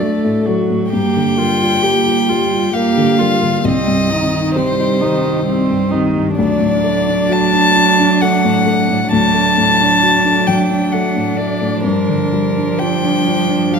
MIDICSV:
0, 0, Header, 1, 5, 480
1, 0, Start_track
1, 0, Key_signature, -2, "minor"
1, 0, Tempo, 909091
1, 486, Time_signature, 3, 2, 24, 8
1, 5763, Tempo, 936037
1, 7240, End_track
2, 0, Start_track
2, 0, Title_t, "Violin"
2, 0, Program_c, 0, 40
2, 0, Note_on_c, 0, 74, 75
2, 243, Note_off_c, 0, 74, 0
2, 480, Note_on_c, 0, 79, 84
2, 1442, Note_on_c, 0, 77, 79
2, 1450, Note_off_c, 0, 79, 0
2, 1927, Note_on_c, 0, 75, 86
2, 1935, Note_off_c, 0, 77, 0
2, 2409, Note_off_c, 0, 75, 0
2, 2412, Note_on_c, 0, 72, 78
2, 3113, Note_off_c, 0, 72, 0
2, 3369, Note_on_c, 0, 74, 82
2, 3864, Note_on_c, 0, 81, 100
2, 3872, Note_off_c, 0, 74, 0
2, 4334, Note_on_c, 0, 78, 79
2, 4342, Note_off_c, 0, 81, 0
2, 4811, Note_off_c, 0, 78, 0
2, 4814, Note_on_c, 0, 81, 99
2, 5529, Note_on_c, 0, 79, 71
2, 5537, Note_off_c, 0, 81, 0
2, 5767, Note_on_c, 0, 78, 61
2, 5775, Note_off_c, 0, 79, 0
2, 5997, Note_on_c, 0, 74, 67
2, 6005, Note_off_c, 0, 78, 0
2, 6235, Note_off_c, 0, 74, 0
2, 6240, Note_on_c, 0, 70, 70
2, 6725, Note_on_c, 0, 79, 79
2, 6732, Note_off_c, 0, 70, 0
2, 7211, Note_on_c, 0, 77, 58
2, 7218, Note_off_c, 0, 79, 0
2, 7240, Note_off_c, 0, 77, 0
2, 7240, End_track
3, 0, Start_track
3, 0, Title_t, "Viola"
3, 0, Program_c, 1, 41
3, 1, Note_on_c, 1, 69, 41
3, 242, Note_on_c, 1, 66, 40
3, 250, Note_off_c, 1, 69, 0
3, 485, Note_off_c, 1, 66, 0
3, 490, Note_on_c, 1, 67, 46
3, 729, Note_on_c, 1, 65, 50
3, 737, Note_off_c, 1, 67, 0
3, 963, Note_on_c, 1, 67, 44
3, 971, Note_off_c, 1, 65, 0
3, 1208, Note_on_c, 1, 65, 43
3, 1216, Note_off_c, 1, 67, 0
3, 1442, Note_off_c, 1, 65, 0
3, 1445, Note_on_c, 1, 67, 49
3, 1683, Note_on_c, 1, 65, 43
3, 1691, Note_off_c, 1, 67, 0
3, 1918, Note_off_c, 1, 65, 0
3, 1921, Note_on_c, 1, 60, 50
3, 2163, Note_on_c, 1, 63, 45
3, 2171, Note_off_c, 1, 60, 0
3, 2411, Note_on_c, 1, 60, 53
3, 2419, Note_off_c, 1, 63, 0
3, 2645, Note_on_c, 1, 63, 47
3, 2653, Note_off_c, 1, 60, 0
3, 2881, Note_off_c, 1, 63, 0
3, 2884, Note_on_c, 1, 60, 49
3, 3121, Note_on_c, 1, 63, 44
3, 3129, Note_off_c, 1, 60, 0
3, 3357, Note_off_c, 1, 63, 0
3, 3360, Note_on_c, 1, 62, 57
3, 4787, Note_off_c, 1, 62, 0
3, 4813, Note_on_c, 1, 62, 51
3, 7240, Note_off_c, 1, 62, 0
3, 7240, End_track
4, 0, Start_track
4, 0, Title_t, "Felt piano"
4, 0, Program_c, 2, 0
4, 0, Control_c, 2, 64, 127
4, 0, Note_on_c, 2, 38, 41
4, 0, Note_on_c, 2, 45, 38
4, 0, Note_on_c, 2, 57, 30
4, 0, Note_on_c, 2, 62, 36
4, 0, Note_on_c, 2, 66, 45
4, 5, Note_off_c, 2, 57, 0
4, 5, Note_on_c, 2, 57, 44
4, 76, Note_off_c, 2, 62, 0
4, 129, Note_off_c, 2, 45, 0
4, 129, Note_on_c, 2, 45, 42
4, 197, Note_off_c, 2, 57, 0
4, 255, Note_on_c, 2, 57, 41
4, 319, Note_off_c, 2, 45, 0
4, 372, Note_on_c, 2, 45, 33
4, 443, Note_off_c, 2, 57, 0
4, 465, Note_off_c, 2, 38, 0
4, 489, Note_off_c, 2, 45, 0
4, 490, Note_on_c, 2, 43, 45
4, 496, Control_c, 2, 64, 0
4, 500, Note_off_c, 2, 66, 0
4, 587, Control_c, 2, 64, 127
4, 615, Note_on_c, 2, 50, 36
4, 726, Note_on_c, 2, 58, 41
4, 804, Note_off_c, 2, 50, 0
4, 855, Note_on_c, 2, 65, 43
4, 919, Note_off_c, 2, 58, 0
4, 971, Note_on_c, 2, 67, 48
4, 1044, Note_off_c, 2, 65, 0
4, 1087, Note_on_c, 2, 65, 41
4, 1162, Note_off_c, 2, 67, 0
4, 1213, Note_on_c, 2, 67, 45
4, 1280, Note_off_c, 2, 65, 0
4, 1332, Note_on_c, 2, 65, 43
4, 1403, Note_off_c, 2, 67, 0
4, 1452, Note_on_c, 2, 58, 43
4, 1523, Note_off_c, 2, 65, 0
4, 1569, Note_on_c, 2, 50, 46
4, 1643, Note_off_c, 2, 58, 0
4, 1689, Note_on_c, 2, 58, 44
4, 1761, Note_off_c, 2, 50, 0
4, 1808, Note_on_c, 2, 50, 39
4, 1881, Note_off_c, 2, 58, 0
4, 1910, Note_off_c, 2, 43, 0
4, 1923, Note_on_c, 2, 36, 52
4, 1929, Note_off_c, 2, 50, 0
4, 1937, Control_c, 2, 64, 0
4, 2014, Control_c, 2, 64, 127
4, 2047, Note_on_c, 2, 43, 41
4, 2172, Note_on_c, 2, 60, 42
4, 2240, Note_off_c, 2, 43, 0
4, 2286, Note_on_c, 2, 63, 41
4, 2363, Note_off_c, 2, 60, 0
4, 2407, Note_on_c, 2, 67, 44
4, 2480, Note_off_c, 2, 63, 0
4, 2534, Note_on_c, 2, 63, 50
4, 2600, Note_off_c, 2, 67, 0
4, 2654, Note_on_c, 2, 67, 46
4, 2723, Note_off_c, 2, 63, 0
4, 2774, Note_on_c, 2, 63, 44
4, 2842, Note_off_c, 2, 67, 0
4, 2892, Note_on_c, 2, 60, 46
4, 2962, Note_off_c, 2, 63, 0
4, 3013, Note_on_c, 2, 43, 45
4, 3081, Note_off_c, 2, 60, 0
4, 3140, Note_on_c, 2, 60, 49
4, 3201, Note_off_c, 2, 43, 0
4, 3253, Note_on_c, 2, 43, 39
4, 3324, Note_off_c, 2, 60, 0
4, 3341, Note_off_c, 2, 36, 0
4, 3369, Note_off_c, 2, 43, 0
4, 3369, Note_on_c, 2, 38, 62
4, 3374, Control_c, 2, 64, 0
4, 3462, Control_c, 2, 64, 127
4, 3483, Note_on_c, 2, 45, 38
4, 3608, Note_on_c, 2, 57, 45
4, 3681, Note_off_c, 2, 45, 0
4, 3735, Note_on_c, 2, 62, 48
4, 3805, Note_off_c, 2, 57, 0
4, 3848, Note_on_c, 2, 66, 51
4, 3928, Note_off_c, 2, 62, 0
4, 3976, Note_on_c, 2, 62, 42
4, 4044, Note_off_c, 2, 66, 0
4, 4096, Note_on_c, 2, 66, 49
4, 4167, Note_off_c, 2, 62, 0
4, 4222, Note_on_c, 2, 62, 43
4, 4287, Note_off_c, 2, 66, 0
4, 4339, Note_on_c, 2, 57, 45
4, 4409, Note_off_c, 2, 62, 0
4, 4457, Note_on_c, 2, 45, 43
4, 4527, Note_off_c, 2, 57, 0
4, 4571, Note_on_c, 2, 57, 44
4, 4646, Note_off_c, 2, 45, 0
4, 4692, Note_on_c, 2, 45, 39
4, 4762, Note_off_c, 2, 57, 0
4, 4792, Note_off_c, 2, 38, 0
4, 4816, Note_on_c, 2, 38, 56
4, 4821, Control_c, 2, 64, 0
4, 4883, Note_off_c, 2, 45, 0
4, 4907, Control_c, 2, 64, 127
4, 4932, Note_on_c, 2, 57, 38
4, 5055, Note_on_c, 2, 45, 42
4, 5123, Note_off_c, 2, 57, 0
4, 5171, Note_on_c, 2, 62, 42
4, 5244, Note_off_c, 2, 45, 0
4, 5290, Note_on_c, 2, 66, 46
4, 5362, Note_off_c, 2, 62, 0
4, 5412, Note_on_c, 2, 62, 44
4, 5481, Note_off_c, 2, 66, 0
4, 5534, Note_on_c, 2, 54, 46
4, 5601, Note_off_c, 2, 62, 0
4, 5652, Note_on_c, 2, 62, 36
4, 5722, Note_off_c, 2, 54, 0
4, 5774, Note_on_c, 2, 57, 44
4, 5839, Note_off_c, 2, 62, 0
4, 5891, Note_on_c, 2, 45, 42
4, 5957, Note_off_c, 2, 57, 0
4, 6002, Note_on_c, 2, 57, 46
4, 6075, Note_off_c, 2, 45, 0
4, 6121, Note_on_c, 2, 45, 36
4, 6190, Note_off_c, 2, 57, 0
4, 6218, Note_off_c, 2, 38, 0
4, 6238, Note_off_c, 2, 45, 0
4, 6238, Note_on_c, 2, 43, 53
4, 6245, Control_c, 2, 64, 0
4, 6344, Control_c, 2, 64, 127
4, 6363, Note_on_c, 2, 50, 34
4, 6486, Note_on_c, 2, 55, 34
4, 6555, Note_off_c, 2, 50, 0
4, 6613, Note_on_c, 2, 62, 37
4, 6678, Note_off_c, 2, 55, 0
4, 6732, Note_on_c, 2, 65, 37
4, 6802, Note_off_c, 2, 62, 0
4, 6850, Note_on_c, 2, 62, 41
4, 6921, Note_off_c, 2, 65, 0
4, 6965, Note_on_c, 2, 65, 38
4, 7040, Note_off_c, 2, 62, 0
4, 7082, Note_on_c, 2, 62, 37
4, 7159, Note_off_c, 2, 65, 0
4, 7200, Note_on_c, 2, 55, 38
4, 7240, Note_off_c, 2, 43, 0
4, 7240, Note_off_c, 2, 55, 0
4, 7240, Note_off_c, 2, 62, 0
4, 7240, End_track
5, 0, Start_track
5, 0, Title_t, "Cello"
5, 0, Program_c, 3, 42
5, 12, Note_on_c, 3, 57, 52
5, 246, Note_on_c, 3, 54, 47
5, 253, Note_off_c, 3, 57, 0
5, 486, Note_off_c, 3, 54, 0
5, 490, Note_on_c, 3, 58, 48
5, 735, Note_on_c, 3, 55, 46
5, 743, Note_off_c, 3, 58, 0
5, 974, Note_on_c, 3, 58, 43
5, 982, Note_off_c, 3, 55, 0
5, 1210, Note_on_c, 3, 55, 46
5, 1218, Note_off_c, 3, 58, 0
5, 1447, Note_off_c, 3, 55, 0
5, 1451, Note_on_c, 3, 58, 57
5, 1689, Note_on_c, 3, 55, 47
5, 1697, Note_off_c, 3, 58, 0
5, 1925, Note_off_c, 3, 55, 0
5, 1928, Note_on_c, 3, 55, 50
5, 2168, Note_on_c, 3, 51, 50
5, 2176, Note_off_c, 3, 55, 0
5, 2413, Note_on_c, 3, 55, 52
5, 2420, Note_off_c, 3, 51, 0
5, 2650, Note_on_c, 3, 51, 51
5, 2658, Note_off_c, 3, 55, 0
5, 2877, Note_off_c, 3, 51, 0
5, 2881, Note_on_c, 3, 55, 51
5, 3129, Note_on_c, 3, 51, 52
5, 3137, Note_off_c, 3, 55, 0
5, 3359, Note_off_c, 3, 51, 0
5, 3362, Note_on_c, 3, 54, 62
5, 4788, Note_off_c, 3, 54, 0
5, 4808, Note_on_c, 3, 54, 59
5, 6214, Note_off_c, 3, 54, 0
5, 6238, Note_on_c, 3, 53, 54
5, 7240, Note_off_c, 3, 53, 0
5, 7240, End_track
0, 0, End_of_file